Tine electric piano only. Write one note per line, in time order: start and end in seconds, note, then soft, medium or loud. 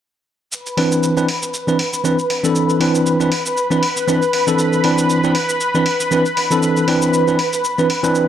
0.77 1.14 E3 medium
0.77 1.14 C4 medium
0.77 1.14 D4 medium
0.77 1.14 B4 medium
1.16 1.26 E3 medium
1.16 1.27 C4 medium
1.16 1.27 D4 medium
1.16 1.27 B4 medium
1.68 1.77 E3 medium
1.68 1.78 C4 medium
1.68 1.78 D4 medium
1.68 1.78 B4 medium
2.04 2.16 E3 medium
2.04 2.17 C4 medium
2.04 2.17 D4 medium
2.04 2.17 B4 medium
2.44 2.78 E3 medium
2.44 2.78 C4 medium
2.44 2.78 D4 medium
2.44 2.79 A4 medium
2.80 3.17 E3 medium
2.80 3.17 C4 medium
2.80 3.17 D4 medium
2.80 3.17 B4 medium
3.20 3.30 E3 medium
3.20 3.30 C4 medium
3.20 3.30 D4 medium
3.20 3.30 B4 medium
3.70 3.81 E3 medium
3.70 3.81 C4 medium
3.70 3.81 D4 medium
3.70 3.81 B4 medium
4.07 4.20 E3 medium
4.07 4.20 C4 medium
4.07 4.20 D4 medium
4.07 4.20 B4 medium
4.47 4.81 E3 medium
4.47 4.82 C4 medium
4.47 4.82 D4 medium
4.47 4.82 A4 medium
4.84 5.21 E3 medium
4.84 5.21 C4 medium
4.84 5.21 D4 medium
4.84 5.21 B4 medium
5.24 5.33 E3 medium
5.24 5.34 C4 medium
5.24 5.34 D4 medium
5.24 5.34 B4 medium
5.74 5.84 E3 medium
5.74 5.84 C4 medium
5.74 5.85 D4 medium
5.74 5.85 B4 medium
6.11 6.23 E3 medium
6.11 6.24 C4 medium
6.11 6.24 D4 medium
6.11 6.24 B4 medium
6.51 6.85 E3 medium
6.51 6.85 C4 medium
6.51 6.85 D4 medium
6.51 6.85 A4 medium
6.88 7.24 E3 medium
6.88 7.24 C4 medium
6.88 7.24 D4 medium
6.88 7.24 B4 medium
7.27 7.37 E3 medium
7.27 7.37 C4 medium
7.27 7.37 D4 medium
7.27 7.37 B4 medium
7.78 7.88 E3 medium
7.78 7.88 C4 medium
7.78 7.88 D4 medium
7.78 7.88 B4 medium
8.03 8.26 E3 medium
8.03 8.26 C4 medium
8.03 8.26 D4 medium
8.03 8.26 B4 medium